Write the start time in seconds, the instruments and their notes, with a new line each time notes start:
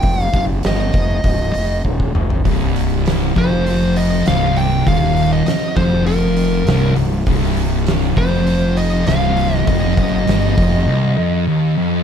Already playing: lead electric guitar G5
0.03 fingered electric bass F1, kick, open hi-hat
0.23 lead electric guitar F5
0.33 fingered electric bass F#1, lead electric guitar F5, kick, open hi-hat
0.63 fingered electric bass G1, lead electric guitar D#5, snare, open hi-hat
0.93 fingered electric bass F1, kick, open hi-hat
1.24 fingered electric bass C1, kick, open hi-hat
1.54 fingered electric bass F1, open hi-hat
1.85 fingered electric bass D#1, kick
2.00 kick
2.15 fingered electric bass F1, mid tom
2.30 floor tom
2.45 fingered electric bass C1, distorted electric guitar C2, kick, open hi-hat
2.76 open hi-hat
3.06 snare, open hi-hat
3.35 fingered electric bass F1, distorted electric guitar F2, lead electric guitar C5, kick, open hi-hat
3.66 open hi-hat
3.96 lead electric guitar D#5, open hi-hat
4.26 fingered electric bass C1, distorted electric guitar C2, lead electric guitar F5, snare, open hi-hat
4.56 lead electric guitar G5, open hi-hat
4.87 fingered electric bass D#1, distorted electric guitar D#2, lead electric guitar F5, kick, open hi-hat
5.16 open hi-hat
5.33 lead electric guitar D#5
5.46 muted fingered electric bass stroke, muted distorted electric guitar stroke, snare, open hi-hat
5.76 fingered electric bass F1, distorted electric guitar F2, lead electric guitar C5, kick, open hi-hat
6.06 lead electric guitar A#4, open hi-hat
6.36 open hi-hat
6.66 fingered electric bass C1, distorted electric guitar C2, snare, open hi-hat
6.96 fingered electric bass C1, distorted electric guitar C2, open hi-hat
7.26 fingered electric bass C1, distorted electric guitar C2, kick, open hi-hat
7.57 open hi-hat
7.87 snare, open hi-hat
8.16 fingered electric bass F1, distorted electric guitar F2, lead electric guitar C5, kick, open hi-hat
8.47 open hi-hat
8.77 lead electric guitar D#5, open hi-hat
9.07 fingered electric bass C1, distorted electric guitar C2, lead electric guitar F5, snare, open hi-hat
9.37 open hi-hat
9.54 lead electric guitar D#5, snare
9.66 fingered electric bass F1, distorted electric guitar F2, lead electric guitar D#5, kick, open hi-hat
9.97 fingered electric bass F#1, distorted electric guitar F#2, kick, open hi-hat
10.27 fingered electric bass G1, distorted electric guitar G2, snare, open hi-hat
10.57 fingered electric bass F1, distorted electric guitar F2, kick, open hi-hat
10.87 distorted electric guitar C2
11.18 distorted electric guitar F2
11.47 distorted electric guitar D#2
11.77 distorted electric guitar F2